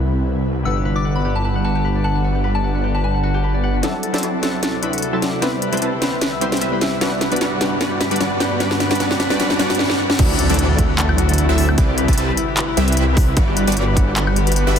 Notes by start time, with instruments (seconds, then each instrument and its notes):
Already playing: detuned saw bass C2, ambient pad C3 G3 E4 B4, synth keys G3 B3 C4 E4 B4
0.63 detuned saw bass G1, synth keys G3 B3 D4 B4 F#5, ambient pad G3 D4 B4 F#5, harp F#4, synth bell E6
0.76 harp G4
0.85 harp B4
0.96 harp D5, synth bell D6
1.05 harp F#5
1.15 harp F#4, synth bell B5
1.25 harp G4
1.35 harp B4, synth bell A5
1.44 harp B4, synth bell A5
1.55 harp F#5
1.64 harp F#4, synth bell A5
1.75 harp G4, synth bell A5
1.85 harp B4
1.95 harp D5
2.04 harp F#5, synth bell A5
2.15 harp F#4
2.24 harp F#4
2.35 harp G4
2.44 harp B4
2.55 harp D5, synth bell A5
2.64 harp F#5
2.74 harp F#4
2.84 harp G4
2.94 harp B4, synth bell A5
3.04 harp B4, synth bell A5
3.14 harp F#5
3.23 harp F#4
3.34 harp G4
3.44 harp B4
3.54 harp D5
3.63 harp F#5
3.74 harp F#4
3.82 ambient pad D2 C3 F#4 E5, synth keys F#3 C4 D4 E4 A4, supersaw synth F#3 C4 E4 A4 D5, harp E4, snare, closed hi-hat, riser
3.94 harp F#4
4.03 harp A4, closed hi-hat
4.13 synth keys F#3 C4 D4 E4 A4, supersaw synth F#3 C4 E4 A4 D5, harp C5, snare, closed hi-hat
4.18 closed hi-hat
4.23 supersaw synth F#3 C4 E4 A4 D5, harp D5, closed hi-hat
4.34 harp E4
4.42 synth keys F#3 C4 D4 E4 A4, harp F#4, snare, closed hi-hat
4.53 harp A4
4.63 harp A4, snare, closed hi-hat
4.73 harp D5
4.81 synth keys F#3 C4 D4 E4 B4, harp E4, closed hi-hat
4.93 harp F#4, closed hi-hat
4.98 closed hi-hat
5.02 harp A4, closed hi-hat
5.12 synth keys F#3 C4 D4 E4 A4, supersaw synth F#3 C4 E4 A4 E5, harp C5
5.22 harp D5, snare, closed hi-hat
5.33 harp E4
5.41 ambient pad C2 E4 B4, synth keys G3 B3 C4 E4 B4, supersaw synth G3 C4 E4 B4 D5, harp E4, snare, closed hi-hat
5.53 harp G4
5.62 harp B4, closed hi-hat
5.72 synth keys G3 B3 C4 E4 B4, supersaw synth G3 C4 E4 B4 A5, harp C5, closed hi-hat
5.77 closed hi-hat
5.82 supersaw synth G3 C4 E4 B4 A5, harp E5, closed hi-hat
5.93 harp E4
6.01 synth keys G3 B3 C4 E4 B4, harp G4, snare, closed hi-hat
6.13 harp B4
6.21 harp B4, snare, closed hi-hat
6.32 harp E5
6.40 synth keys G3 B3 C4 E4 C5, supersaw synth G3 C4 E4 B4 E5, harp E4, closed hi-hat
6.52 harp G4, snare, closed hi-hat
6.57 closed hi-hat
6.61 supersaw synth G3 C4 E4 B4 E5, harp B4, closed hi-hat
6.71 synth keys G3 B3 C4 E4 B4, harp C5
6.81 harp E5, snare, closed hi-hat
6.92 harp E4
7.00 ambient pad G2 D3 F#5, synth keys G3 B3 D4 F#4 B4, supersaw synth G3 D4 F#4 B4 D5, harp F#4, snare, closed hi-hat
7.12 harp G4
7.21 harp B4, snare, closed hi-hat
7.31 synth keys G3 B3 D4 F#4 B4, supersaw synth G3 D4 F#4 B4 D5, harp D5, closed hi-hat
7.36 closed hi-hat
7.41 supersaw synth G3 D4 F#4 B4 D5, harp F#5, snare, closed hi-hat
7.52 harp F#4
7.60 synth keys G3 B3 D4 F#4 B4, harp G4, snare, closed hi-hat
7.71 harp B4
7.80 synth keys G3 B3 D4 F#4 B4, supersaw synth G3 D4 F#4 B4 D5, harp F#4, snare, closed hi-hat
7.91 harp G4
8.00 harp B4, snare, closed hi-hat
8.10 synth keys G3 B3 D4 F#4 B4, supersaw synth G3 D4 F#4 B4 D5, harp D5, closed hi-hat
8.16 closed hi-hat
8.20 supersaw synth G3 D4 F#4 B4 D5, harp F#5, snare, closed hi-hat
8.31 harp F#4
8.39 synth keys G3 B3 D4 F#4 B4, harp G4, snare, closed hi-hat
8.51 harp B4
8.59 synth keys G3 B3 D4 F#4 B4, supersaw synth G3 D4 F#4 B4 D5, harp F#4, snare, closed hi-hat
8.70 harp G4, snare
8.80 harp B4, snare, closed hi-hat
8.89 synth keys G3 B3 D4 F#4 B4, supersaw synth G3 D4 F#4 B4 D5, harp D5, snare, closed hi-hat
8.95 synth keys G3 B3, closed hi-hat
9.00 supersaw synth G3 D4 F#4 B4 D5, synth keys D4 F#4 B4, harp F#4, snare, closed hi-hat
9.10 harp G4, snare
9.19 harp B4, snare, closed hi-hat
9.29 synth keys G3 B3 D4 F#4 B4, supersaw synth G3 D4 F#4 B4 D5, harp D5, snare
9.39 synth keys G3 B3 D4 F#4 B4, supersaw synth G3 D4 F#4 B4 D5, harp F#4, snare, closed hi-hat
9.50 harp G4, snare
9.59 synth keys G3 B3 D4 F#4 B4, supersaw synth G3 D4 F#4 B4 D5, harp F#4, snare, closed hi-hat
9.70 harp G4, snare, closed hi-hat
9.75 closed hi-hat
9.79 harp F#4, snare
9.90 harp G4, snare
9.99 harp F#4
10.09 harp G4, snare
10.19 detuned saw bass D2, ambient pad D3 C4 E4 F#4, supersaw synth F#3 C4 E4 A4 D5, harp E4, kick, closed hi-hat, crash, impact
10.29 harp F#4
10.39 harp A4, closed hi-hat
10.49 detuned saw bass D2, supersaw synth F#3 C4 E4 A4 D5, harp E4, closed hi-hat
10.54 closed hi-hat
10.59 detuned saw bass D2, supersaw synth F#3 C4 E4 A4 D5, harp F#4, closed hi-hat
10.69 harp A4
10.79 harp E4, kick, closed hi-hat
10.89 harp F#4
10.98 harp A4, clap, closed hi-hat
11.09 harp E4, high woodblock
11.18 harp F#4, closed hi-hat
11.29 harp A4, closed hi-hat
11.34 closed hi-hat
11.38 harp E4, closed hi-hat
11.49 detuned saw bass D2, supersaw synth F#3 C4 E4 A4 E5, harp F#4
11.58 harp A4, open hi-hat
11.69 harp E4, high woodblock
11.78 detuned saw bass C2, ambient pad C3 G3 B4, supersaw synth G3 C4 E4 B4 D5, harp E4, kick, closed hi-hat
11.89 harp G4
11.98 harp B4, closed hi-hat
12.08 detuned saw bass C2, supersaw synth G3 C4 E4 B4 A5, harp E4, kick, closed hi-hat
12.13 closed hi-hat
12.18 detuned saw bass C2, supersaw synth G3 C4 E4 B4 A5, harp G4, closed hi-hat
12.28 harp B4
12.37 harp E4, closed hi-hat
12.48 harp G4
12.57 harp B4, clap, closed hi-hat
12.68 harp E4
12.77 detuned saw bass C2, supersaw synth G3 C4 E4 B4 E5, harp G4, closed hi-hat
12.88 harp B4, closed hi-hat
12.92 closed hi-hat
12.97 detuned saw bass C2, supersaw synth G3 C4 E4 B4 E5, harp E4, closed hi-hat
13.08 harp G4
13.17 harp B4, kick, open hi-hat
13.28 harp E4
13.37 detuned saw bass G1, supersaw synth G3 D4 F#4 B4 D5, ambient pad D4 B4 F#5, harp F#4, kick, closed hi-hat
13.48 harp G4
13.57 harp B4, closed hi-hat
13.67 detuned saw bass G1, supersaw synth G3 D4 F#4 B4 D5, harp F#4, closed hi-hat
13.72 closed hi-hat
13.77 detuned saw bass G1, supersaw synth G3 D4 F#4 B4 D5, harp G4, closed hi-hat
13.87 harp B4
13.96 harp F#4, kick, closed hi-hat
14.07 harp G4
14.16 harp B4, clap, closed hi-hat
14.27 harp F#4, high woodblock
14.36 harp G4, closed hi-hat
14.47 harp B4, closed hi-hat
14.52 closed hi-hat
14.56 harp F#4, closed hi-hat
14.67 detuned saw bass G1, supersaw synth G3 D4 F#4 B4 E5, harp G4
14.76 harp B4